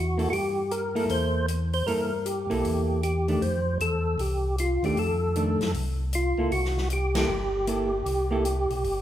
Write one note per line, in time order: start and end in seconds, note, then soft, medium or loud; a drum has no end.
0.00 0.28 E2 medium
0.00 0.29 F#4 medium
0.18 0.30 A#3 medium
0.18 0.31 E4 medium
0.18 0.31 A4 medium
0.18 open hi-hat soft
0.30 1.05 G2 medium
0.30 0.34 F#4 medium
0.30 0.72 G4 medium
0.30 open hi-hat soft
0.71 1.07 A#4 medium
0.71 closed hi-hat soft
0.95 1.45 A#3 medium
0.95 1.45 E4 medium
0.95 1.46 A4 medium
0.95 open hi-hat soft
1.09 1.83 E2 medium
1.09 1.46 C5 loud
1.09 open hi-hat soft
1.48 closed hi-hat medium
1.73 1.86 C5 loud
1.73 open hi-hat soft
1.87 2.46 G2 medium
1.87 2.10 A#3 medium
1.87 2.10 E4 medium
1.87 2.10 A4 medium
1.87 2.27 A#4 loud
1.87 open hi-hat soft
2.25 3.02 G4 medium
2.25 closed hi-hat soft
2.50 2.64 B1 medium
2.50 3.00 A#3 medium
2.50 3.00 E4 medium
2.50 3.01 A4 medium
2.50 open hi-hat soft
2.65 3.38 E2 medium
2.65 open hi-hat soft
3.03 3.43 G4 medium
3.03 closed hi-hat medium
3.28 3.40 D#3 medium
3.28 3.41 A3 medium
3.28 3.41 D4 medium
3.28 open hi-hat soft
3.42 3.78 F2 medium
3.42 3.78 C5 medium
3.42 open hi-hat soft
3.80 4.16 E2 medium
3.80 4.21 A4 medium
3.80 closed hi-hat medium
4.18 4.78 C2 medium
4.18 4.56 G4 medium
4.18 open hi-hat soft
4.58 4.85 F4 medium
4.58 closed hi-hat medium
4.83 4.96 D#2 medium
4.83 4.96 D#3 medium
4.83 4.96 A3 medium
4.83 4.96 D4 medium
4.83 4.99 G4 medium
4.83 open hi-hat soft
4.97 5.57 F2 medium
4.97 5.72 A4 medium
4.97 open hi-hat soft
5.36 5.58 D#3 soft
5.36 5.59 A3 medium
5.36 5.59 D4 medium
5.36 closed hi-hat soft
5.61 5.74 F#2 medium
5.61 snare soft
5.61 open hi-hat soft
5.74 6.34 C2 medium
5.74 open hi-hat soft
6.13 6.50 F4 medium
6.13 closed hi-hat medium
6.38 6.51 C#2 medium
6.38 6.51 A#3 medium
6.38 6.51 E4 medium
6.38 6.52 A4 medium
6.51 7.25 C2 medium
6.51 6.88 F#4 medium
6.51 open hi-hat soft
6.65 snare soft
6.77 snare soft
6.90 7.17 G4 medium
6.90 closed hi-hat medium
7.15 7.28 A#3 medium
7.15 7.28 E4 medium
7.15 9.02 G4 medium
7.15 7.29 A4 medium
7.15 snare medium
7.15 ride medium
7.28 8.03 G1 medium
7.67 7.91 A#3 medium
7.67 7.91 E4 medium
7.67 7.91 A4 medium
7.67 closed hi-hat medium
8.06 8.67 C2 medium
8.06 open hi-hat soft
8.31 8.44 A#3 medium
8.31 8.45 E4 medium
8.31 8.45 A4 medium
8.45 closed hi-hat medium
8.70 8.84 B1 medium
8.70 open hi-hat soft
8.84 9.02 G1 medium
8.84 open hi-hat soft